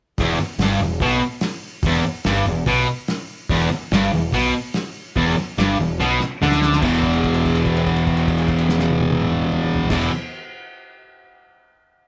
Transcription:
0.18 0.38 E1 medium
0.18 0.39 E2 loud
0.18 kick loud
0.18 open hi-hat medium
0.39 muted distorted electric guitar stroke medium
0.39 snare soft
0.59 0.78 G1 loud
0.59 0.81 G2 loud
0.59 snare loud
0.59 open hi-hat medium
0.80 0.99 E1 medium
0.80 0.98 E2 medium
1.00 1.20 B1 loud
1.00 1.22 B2 loud
1.00 kick loud
1.00 open hi-hat medium
1.41 snare loud
1.41 open hi-hat medium
1.83 2.03 E1 medium
1.83 2.04 E2 loud
1.83 kick loud
1.83 open hi-hat medium
2.05 muted distorted electric guitar stroke medium
2.24 2.45 G1 loud
2.24 2.46 G2 loud
2.24 snare loud
2.24 open hi-hat medium
2.45 2.65 E1 medium
2.45 2.63 E2 medium
2.66 2.86 B1 loud
2.66 2.87 B2 loud
2.66 kick loud
2.66 open hi-hat medium
3.08 snare loud
3.08 open hi-hat medium
3.49 3.69 E1 medium
3.49 3.70 E2 loud
3.49 kick loud
3.49 open hi-hat medium
3.71 muted distorted electric guitar stroke medium
3.71 snare soft
3.91 4.11 G1 loud
3.91 4.12 G2 loud
3.91 snare loud
3.91 open hi-hat medium
4.13 4.32 E1 medium
4.13 4.29 E2 medium
4.32 4.52 B1 medium
4.32 4.53 B2 loud
4.32 kick medium
4.32 open hi-hat medium
4.74 snare loud
4.74 open hi-hat medium
5.16 5.36 E1 medium
5.16 5.36 E2 loud
5.16 kick loud
5.16 open hi-hat medium
5.37 muted distorted electric guitar stroke medium
5.37 muted picked electric bass stroke soft
5.37 snare soft
5.58 5.77 G1 medium
5.58 5.78 G2 loud
5.58 snare loud
5.58 open hi-hat medium
5.79 5.98 E1 medium
5.79 5.96 E2 medium
6.00 6.19 B1 medium
6.00 6.20 B2 loud
6.00 snare medium
6.20 snare medium
6.42 6.80 D2 loud
6.42 6.82 D3 loud
6.42 snare medium
6.52 snare medium
6.62 snare loud
6.72 snare medium
6.81 9.81 E1 loud
6.81 9.90 E2 loud
6.81 9.92 B2 loud
6.81 kick loud
6.81 crash medium
6.85 9.94 E3 loud
7.03 kick medium
7.03 crash soft
7.13 crash soft
7.24 kick medium
7.24 crash soft
7.34 crash soft
7.45 kick medium
7.45 crash medium
7.55 crash medium
7.66 kick medium
7.66 crash soft
7.77 crash medium
7.86 kick medium
7.86 crash soft
7.96 crash medium
8.07 kick medium
8.07 crash medium
8.17 crash soft
8.28 kick medium
8.28 crash medium
8.38 crash medium
8.48 kick medium
8.48 crash medium
8.58 crash medium
8.69 snare medium
8.79 snare medium
8.90 high tom loud
9.00 high tom loud
9.11 high tom loud
9.21 mid tom loud
9.32 mid tom medium
9.43 mid tom loud
9.52 mid tom loud
9.63 mid tom loud
9.74 floor tom loud
9.84 floor tom loud
9.90 10.07 E1 medium
9.90 10.09 E2 medium
9.90 10.10 B2 loud
9.90 kick loud
9.90 snare loud
9.90 crash loud
9.95 10.11 E3 medium

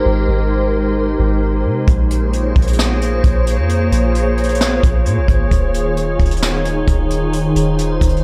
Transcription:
0.00 1.84 G#3 medium
0.00 1.84 D#4 medium
0.00 1.84 G4 medium
0.00 1.84 A#4 medium
0.00 1.84 C5 medium
0.06 0.28 G#1 loud
0.28 1.16 G#1 loud
1.19 1.66 G#1 loud
1.65 1.87 C3 medium
1.88 2.53 A#1 loud
1.88 5.48 A#3 medium
1.88 8.24 F4 medium
1.88 8.24 G#4 medium
1.88 5.48 C5 medium
1.88 7.29 C#5 medium
1.88 kick loud
1.88 closed hi-hat medium
2.11 closed hi-hat medium
2.33 closed hi-hat medium
2.56 3.21 A#1 loud
2.56 kick medium
2.56 closed hi-hat soft
2.62 closed hi-hat medium
2.67 closed hi-hat medium
2.73 closed hi-hat medium
2.79 snare loud
3.01 closed hi-hat medium
3.24 3.60 A#1 loud
3.24 kick loud
3.24 closed hi-hat medium
3.47 closed hi-hat medium
3.58 3.90 F2 loud
3.69 closed hi-hat medium
3.92 4.79 A#1 loud
3.92 closed hi-hat medium
4.15 closed hi-hat medium
4.38 closed hi-hat soft
4.43 closed hi-hat medium
4.49 closed hi-hat medium
4.55 closed hi-hat medium
4.61 snare loud
4.83 5.07 A#1 loud
4.83 kick loud
4.83 closed hi-hat medium
5.06 5.19 A#2 loud
5.06 closed hi-hat medium
5.17 5.28 A#1 loud
5.28 5.50 G#1 loud
5.28 kick medium
5.28 closed hi-hat medium
5.51 6.17 D#1 loud
5.51 8.24 D#3 medium
5.51 8.24 D#4 medium
5.51 kick loud
5.51 closed hi-hat medium
5.74 closed hi-hat medium
5.97 closed hi-hat medium
6.20 6.85 D#1 loud
6.20 kick medium
6.20 closed hi-hat soft
6.25 closed hi-hat medium
6.31 closed hi-hat medium
6.37 closed hi-hat medium
6.42 snare loud
6.65 closed hi-hat medium
6.87 7.53 D#1 loud
6.87 kick loud
6.87 closed hi-hat medium
7.10 closed hi-hat medium
7.33 8.24 C5 medium
7.33 closed hi-hat medium
7.56 7.99 D#1 loud
7.56 closed hi-hat medium
7.79 closed hi-hat medium
8.01 8.24 D#1 loud
8.01 kick medium
8.01 closed hi-hat medium
8.09 closed hi-hat medium
8.17 closed hi-hat soft

